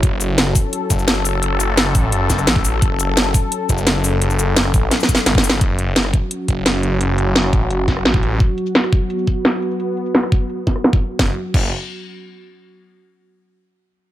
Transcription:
0.00 0.54 F#1 loud
0.00 5.57 F#3 medium
0.00 5.57 C#4 medium
0.00 5.59 A4 medium
0.00 kick loud
0.00 closed hi-hat medium
0.21 closed hi-hat medium
0.21 shaker medium
0.38 snare loud
0.38 closed hi-hat medium
0.47 cross-stick soft
0.55 kick loud
0.55 open hi-hat medium
0.55 shaker medium
0.73 closed hi-hat medium
0.90 1.06 F#1 loud
0.90 kick medium
0.90 closed hi-hat medium
0.90 shaker medium
0.99 shaker soft
1.08 1.41 F#1 loud
1.08 snare loud
1.08 closed hi-hat medium
1.25 open hi-hat medium
1.25 shaker medium
1.43 1.94 F#1 loud
1.43 closed hi-hat medium
1.60 closed hi-hat medium
1.60 shaker medium
1.77 snare loud
1.77 closed hi-hat medium
1.86 cross-stick soft
1.95 2.11 A1 loud
1.95 kick loud
1.95 open hi-hat medium
1.95 shaker medium
2.12 2.46 F#1 loud
2.12 closed hi-hat medium
2.30 kick medium
2.30 snare soft
2.30 closed hi-hat medium
2.30 shaker medium
2.39 cross-stick soft
2.39 shaker soft
2.47 2.81 A1 loud
2.47 snare loud
2.47 closed hi-hat medium
2.56 kick loud
2.65 open hi-hat medium
2.65 shaker medium
2.82 3.33 F#1 loud
2.82 kick loud
2.82 closed hi-hat loud
3.00 closed hi-hat medium
3.00 shaker medium
3.17 snare loud
3.17 closed hi-hat loud
3.26 cross-stick soft
3.34 kick loud
3.34 open hi-hat medium
3.34 shaker medium
3.52 closed hi-hat loud
3.69 3.85 F#1 medium
3.69 kick medium
3.69 closed hi-hat medium
3.69 shaker medium
3.78 shaker soft
3.87 4.20 F#1 loud
3.87 snare loud
3.87 closed hi-hat loud
4.04 open hi-hat medium
4.04 shaker medium
4.22 4.73 F#1 loud
4.22 closed hi-hat loud
4.30 shaker soft
4.39 closed hi-hat medium
4.39 shaker medium
4.57 snare loud
4.57 closed hi-hat loud
4.65 cross-stick soft
4.74 4.90 A1 loud
4.74 kick loud
4.74 open hi-hat medium
4.74 shaker medium
4.91 snare medium
4.91 closed hi-hat loud
5.00 snare medium
5.00 shaker soft
5.09 kick medium
5.09 closed hi-hat medium
5.09 shaker medium
5.15 snare medium
5.15 shaker soft
5.26 5.60 G1 loud
5.26 snare medium
5.26 closed hi-hat loud
5.35 kick loud
5.35 snare medium
5.44 open hi-hat medium
5.44 shaker medium
5.50 snare loud
5.61 6.12 F#1 loud
5.61 11.15 F#3 medium
5.61 8.37 C#4 medium
5.61 11.15 F#4 medium
5.61 kick loud
5.61 closed hi-hat loud
5.79 closed hi-hat medium
5.96 snare loud
5.96 closed hi-hat medium
6.05 cross-stick soft
6.14 kick loud
6.14 closed hi-hat medium
6.31 closed hi-hat loud
6.48 6.64 F#1 loud
6.48 kick medium
6.48 closed hi-hat medium
6.66 6.99 F#1 loud
6.66 snare loud
6.66 closed hi-hat loud
6.83 closed hi-hat medium
7.01 7.52 F#1 loud
7.01 closed hi-hat medium
7.18 closed hi-hat medium
7.36 snare loud
7.36 closed hi-hat loud
7.44 cross-stick soft
7.53 7.69 A1 loud
7.53 kick loud
7.53 closed hi-hat medium
7.70 8.04 F#1 loud
7.70 closed hi-hat loud
7.88 kick medium
7.88 snare soft
7.88 closed hi-hat medium
7.97 cross-stick soft
8.05 8.39 A1 loud
8.05 snare loud
8.05 closed hi-hat loud
8.14 kick loud
8.23 closed hi-hat medium
8.40 11.17 B3 medium
8.40 kick loud
8.40 closed hi-hat medium
8.40 shaker soft
8.58 closed hi-hat medium
8.66 shaker medium
8.75 snare loud
8.75 closed hi-hat medium
8.75 shaker soft
8.84 cross-stick soft
8.84 shaker soft
8.93 kick loud
8.93 closed hi-hat medium
9.10 closed hi-hat medium
9.10 shaker soft
9.19 shaker soft
9.27 kick medium
9.27 closed hi-hat medium
9.45 snare loud
9.45 closed hi-hat medium
9.45 shaker soft
9.62 closed hi-hat medium
9.62 shaker soft
9.71 shaker medium
9.80 closed hi-hat medium
9.80 shaker soft
9.97 closed hi-hat medium
10.06 shaker medium
10.15 snare loud
10.15 closed hi-hat medium
10.15 shaker soft
10.23 cross-stick soft
10.23 shaker soft
10.32 kick loud
10.50 closed hi-hat medium
10.50 shaker soft
10.58 shaker soft
10.67 kick medium
10.67 snare soft
10.76 cross-stick soft
10.84 snare loud
10.84 closed hi-hat medium
10.93 kick loud
11.11 shaker medium
11.19 11.29 F#1 loud
11.19 11.36 F#3 medium
11.19 11.36 C#4 medium
11.19 11.36 F#4 medium
11.19 kick loud
11.19 snare medium
11.54 11.70 F#1 loud
11.54 kick loud
11.54 crash medium

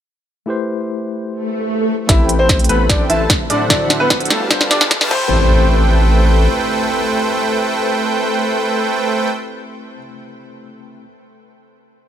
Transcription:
0.46 2.04 A3 medium
0.46 2.04 E4 medium
0.46 2.05 G4 medium
0.46 2.05 B4 medium
0.50 2.06 C5 medium
1.28 swell medium
2.07 2.67 A1 medium
2.07 3.65 A3 medium
2.07 2.67 A3 medium
2.07 3.66 E4 medium
2.07 2.25 E4 medium
2.07 3.66 G4 medium
2.07 2.67 A4 medium
2.07 2.67 B4 medium
2.07 2.67 C5 medium
2.07 2.25 E5 medium
2.07 2.67 G5 medium
2.07 3.67 B5 medium
2.07 kick medium
2.07 snare soft
2.07 closed hi-hat medium
2.07 riser medium
2.11 3.67 C4 medium
2.29 closed hi-hat medium
2.39 2.55 C4 medium
2.39 2.55 C5 medium
2.49 kick loud
2.49 snare medium
2.49 closed hi-hat medium
2.59 closed hi-hat soft
2.64 closed hi-hat medium
2.69 2.88 A1 medium
2.69 2.87 A3 medium
2.69 2.80 B3 medium
2.69 2.87 A4 medium
2.69 2.80 B4 medium
2.69 2.87 B4 medium
2.69 2.87 C5 medium
2.69 2.87 B5 loud
2.69 closed hi-hat medium
2.89 3.08 A1 medium
2.89 3.07 A3 medium
2.89 3.00 D4 medium
2.89 3.07 A4 medium
2.89 3.07 B4 medium
2.89 3.07 C5 medium
2.89 3.00 D5 medium
2.89 3.07 G5 loud
2.89 kick medium
2.89 snare medium
2.89 closed hi-hat medium
3.10 3.27 A1 loud
3.10 3.29 A3 loud
3.10 3.20 E4 medium
3.10 3.29 A4 medium
3.10 3.29 B4 medium
3.10 3.29 C5 medium
3.10 3.20 E5 medium
3.10 3.29 A5 loud
3.10 closed hi-hat medium
3.30 kick loud
3.30 snare medium
3.30 closed hi-hat medium
3.50 4.28 D1 loud
3.50 3.60 D4 medium
3.50 4.28 D4 medium
3.50 4.28 A4 medium
3.50 4.28 C5 medium
3.50 3.60 D5 medium
3.50 4.28 E5 medium
3.50 4.28 F#5 loud
3.50 closed hi-hat medium
3.68 4.46 D3 medium
3.68 4.46 D4 medium
3.68 3.86 D4 medium
3.68 4.47 E4 medium
3.68 4.47 F#4 medium
3.68 4.48 C5 medium
3.68 3.86 D5 loud
3.68 kick loud
3.68 snare medium
3.68 closed hi-hat medium
3.90 snare medium
3.90 closed hi-hat medium
4.00 4.16 B3 medium
4.00 4.16 B4 loud
4.10 kick loud
4.10 snare medium
4.10 closed hi-hat medium
4.20 closed hi-hat medium
4.25 closed hi-hat medium
4.30 4.99 G1 loud
4.30 4.99 G3 medium
4.30 4.41 A3 medium
4.30 4.99 G4 medium
4.30 4.41 A4 medium
4.30 4.99 B4 medium
4.30 4.99 F5 medium
4.30 4.99 A5 medium
4.30 snare medium
4.30 closed hi-hat medium
4.49 5.10 G3 medium
4.49 4.61 C4 medium
4.49 5.10 D4 medium
4.49 5.11 F4 medium
4.49 5.12 A4 medium
4.49 5.12 B4 medium
4.49 4.61 C5 medium
4.49 kick loud
4.49 snare loud
4.49 closed hi-hat medium
4.61 snare medium
4.71 4.81 D4 medium
4.71 4.81 D5 medium
4.71 snare loud
4.71 closed hi-hat medium
4.81 snare medium
4.91 kick loud
4.91 snare loud
4.91 closed hi-hat medium
5.01 5.10 G2 loud
5.01 5.11 G3 loud
5.01 5.11 G4 medium
5.01 5.10 B4 medium
5.01 5.11 F5 loud
5.01 5.11 A5 loud
5.01 snare medium
5.08 6.48 A1 loud
5.08 9.94 A3 medium
5.08 9.29 A3 medium
5.08 9.95 E4 medium
5.08 9.97 G4 medium
5.08 9.29 A4 medium
5.08 9.29 B4 medium
5.08 9.97 C5 medium
5.08 9.29 C5 medium
5.08 9.29 G5 loud
5.08 kick loud
5.08 crash medium
5.08 impact medium
5.12 10.00 C4 loud
5.12 9.98 B5 medium

